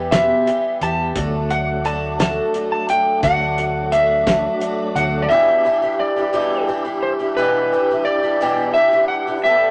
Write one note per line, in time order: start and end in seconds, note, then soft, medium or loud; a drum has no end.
0.00 0.31 E2 medium
0.00 0.12 E3 medium
0.00 0.12 G3 medium
0.00 0.12 B3 medium
0.00 0.11 G4 medium
0.11 0.48 E2 medium
0.11 0.48 B2 medium
0.11 0.45 E3 medium
0.11 0.45 G3 medium
0.11 0.46 B3 medium
0.11 0.46 G4 medium
0.11 0.77 E5 loud
0.11 snare loud
0.11 closed hi-hat medium
0.46 0.81 E3 medium
0.46 0.81 G3 medium
0.46 0.81 B3 medium
0.46 0.81 G4 medium
0.46 closed hi-hat medium
0.81 1.12 E2 medium
0.81 1.15 E3 medium
0.81 1.15 G3 medium
0.81 1.16 B3 medium
0.81 1.16 G4 medium
0.81 1.54 A5 loud
0.81 closed hi-hat medium
1.16 2.38 D2 loud
1.16 1.51 D3 medium
1.16 5.26 F#3 medium
1.16 1.51 A3 medium
1.16 5.27 A3 medium
1.16 1.50 D4 medium
1.16 5.27 D4 medium
1.16 1.48 F#4 medium
1.16 kick loud
1.16 closed hi-hat medium
1.50 1.84 A3 soft
1.50 1.84 D4 medium
1.50 1.85 F#4 soft
1.50 1.86 F#5 loud
1.50 closed hi-hat medium
1.84 2.19 D3 medium
1.84 2.18 A3 medium
1.84 2.18 D4 medium
1.84 2.18 F#4 medium
1.84 2.19 A5 medium
1.84 closed hi-hat medium
2.19 2.52 D3 medium
2.19 2.53 A3 medium
2.19 2.54 D4 medium
2.19 2.54 F#4 medium
2.19 2.68 A5 loud
2.19 snare loud
2.19 closed hi-hat medium
2.54 2.89 D3 medium
2.54 2.89 A3 medium
2.54 2.88 D4 medium
2.54 2.90 F#4 medium
2.54 closed hi-hat medium
2.72 2.88 A5 medium
2.89 3.22 A3 medium
2.89 3.23 D4 medium
2.89 3.23 G5 medium
2.89 closed hi-hat medium
3.22 4.45 D2 medium
3.22 3.58 D3 medium
3.22 3.58 A3 medium
3.22 3.58 D4 medium
3.22 3.56 F#4 medium
3.22 4.23 F#5 medium
3.22 kick loud
3.22 closed hi-hat medium
3.58 3.92 A3 soft
3.58 3.93 D4 soft
3.58 3.92 F#4 medium
3.58 closed hi-hat medium
3.92 4.27 D3 medium
3.92 4.26 A3 medium
3.92 4.26 D4 medium
3.92 4.26 F#4 medium
3.92 4.92 E5 medium
3.92 closed hi-hat medium
4.27 4.59 D3 medium
4.27 4.60 A3 medium
4.27 4.61 D4 medium
4.27 4.61 F#4 medium
4.27 kick medium
4.27 snare loud
4.27 closed hi-hat medium
4.60 4.96 D3 medium
4.60 4.96 A3 medium
4.60 4.96 D4 medium
4.60 4.95 F#4 medium
4.60 closed hi-hat medium
4.95 5.26 D2 medium
4.95 5.31 A3 medium
4.95 5.30 D4 medium
4.95 5.31 F#4 medium
4.95 5.24 F#5 loud
4.95 closed hi-hat medium
5.22 5.30 D5 medium
5.29 5.65 E2 medium
5.29 5.65 B2 medium
5.29 5.64 E3 medium
5.29 5.64 G3 medium
5.29 9.39 D4 medium
5.29 5.65 D4 medium
5.29 9.39 E4 medium
5.29 9.40 G4 medium
5.29 5.65 G4 medium
5.29 6.01 E5 loud
5.65 5.82 E3 medium
5.65 5.83 G3 medium
5.65 5.82 D4 medium
5.65 5.81 G4 medium
5.82 6.17 E3 soft
5.82 6.17 G3 soft
5.82 6.16 D4 medium
5.82 6.15 G4 medium
6.00 6.65 D5 medium
6.16 6.32 E3 soft
6.16 6.32 G3 medium
6.16 6.33 D4 soft
6.16 6.33 G4 medium
6.33 6.68 E2 medium
6.33 6.68 B2 medium
6.33 6.66 E3 medium
6.33 6.67 G3 medium
6.33 6.68 D4 loud
6.33 6.68 G4 medium
6.68 6.85 E3 medium
6.68 6.85 G3 medium
6.68 6.84 D4 medium
6.68 6.83 G4 medium
6.84 7.20 E3 soft
6.84 7.19 G3 medium
6.84 7.19 D4 soft
6.84 7.18 G4 medium
7.03 7.12 C5 medium
7.19 7.37 E3 soft
7.19 7.37 G3 medium
7.19 7.37 D4 medium
7.19 7.37 G4 medium
7.37 7.72 E2 medium
7.37 7.72 B2 medium
7.37 7.71 E3 medium
7.37 7.72 G3 medium
7.37 7.72 D4 medium
7.37 7.73 G4 medium
7.37 8.08 B4 loud
7.72 7.89 E3 medium
7.72 7.90 G3 medium
7.72 7.90 D4 medium
7.72 7.89 G4 medium
7.90 8.24 E3 soft
7.90 8.23 G3 medium
7.90 8.23 D4 medium
7.90 8.22 G4 medium
8.05 8.73 D5 medium
8.23 8.41 E3 soft
8.23 8.41 G3 soft
8.23 8.40 D4 soft
8.23 8.41 G4 medium
8.40 8.75 E2 medium
8.40 8.75 B2 medium
8.40 8.73 E3 medium
8.40 8.74 G3 medium
8.40 8.75 D4 medium
8.40 8.76 G4 loud
8.74 8.92 E3 medium
8.74 8.92 G3 medium
8.74 8.92 D4 medium
8.74 8.90 G4 medium
8.74 9.08 E5 loud
8.92 9.28 E3 soft
8.92 9.27 G3 medium
8.92 9.27 D4 medium
8.92 9.26 G4 medium
9.08 9.41 F#5 loud
9.27 9.45 E3 soft
9.27 9.44 G3 soft
9.27 9.45 D4 medium
9.27 9.44 G4 medium
9.44 9.71 G3 medium
9.44 9.71 B3 medium
9.44 9.71 D4 medium
9.44 9.71 G4 medium
9.44 9.71 A4 medium
9.44 9.71 E5 loud